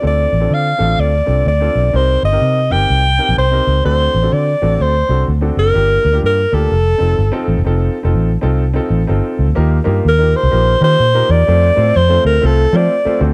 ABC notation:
X:1
M:4/4
L:1/16
Q:"Swing" 1/4=126
K:Fmix
V:1 name="Alto saxophone"
d4 f4 d4 d4 | c2 e4 g6 c4 | c4 d4 c4 z2 B2- | B4 B2 A8 z2 |
z16 | z4 B2 c4 c4 d2- | d4 c2 B2 A2 d4 z2 |]
V:2 name="Upright piano"
[CDFA]2 z [CDFA]2 z [CD=EFA]3 z [CDFA]2 z [CDFA]2 z | [CEGB]2 z [CEGB]2 z [CEGB]3 z [CEGB]2 z [CEGB]2 z | [CD^FA]2 z [CDFA]2 z [CDFA]3 z [CDFA]2 z [CDFA]2 z | [B,DFG]2 z [B,DFG]2 z [B,DFG]2 z2 [CEFA]2 z [CEFA]2 z |
[CEFA]2 z [CEFA]2 z [CEFA]2 z [CEFA]2 z [CEFA]3 z | [B,EFGB] z [B,EFGB]2 z [B,EFGB]2 z [B,EFGB] z [B,EFGB]2 z [B,EFGB]2 z | [A,CFAc] z [A,CFAc]2 z [A,CFAc]2 z [A,CFAc] z [A,CFAc]2 z [A,CFAc] [CD^FAc]2 |]
V:3 name="Fingered electric bass" clef=bass
D,,2 A,,,2 D,2 A,,,2 D,,2 C,,2 D,,2 _C,,2 | C,,2 G,,,2 C,2 G,,,2 C,,3 B,,, C,,2 _D,,2 | D,,2 A,,,2 D,2 A,,,2 D,,2 C,,2 D,,2 ^F,,,2 | G,,,2 D,,2 G,,2 D,,2 F,,,2 F,,,2 G,,, z A,,, F,,, |
F,,,2 z F,,, A,,,2 C,,4 A,,,2 G,,, z _D,, =D,, | E,,2 G,,2 E,,3 C,, B,,,2 E,2 B,,2 =E,,2 | F,,2 A,,2 F,,2 D,,2 C,,2 F,2 z2 D,,2 |]